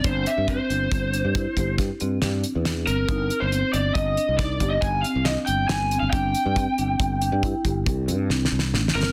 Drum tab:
HH |x--x--x--x--x--x--x--x--x--x--x--x--x--x--|x--x--x--x--x--x--x--x--x--x--x--x--x--x--|x--x--x--x--x--x--x--x--x--x--------------|
SD |------------------------o-----o-----o-----|------------------o-----------o-----o-----|------------------------------o-o-o-o-o-o-|
BD |o-----o-----o-----o--o--o-----------------|o-----------o-----o--o--o-----------------|o-----o-----o-----o--o--o-----------------|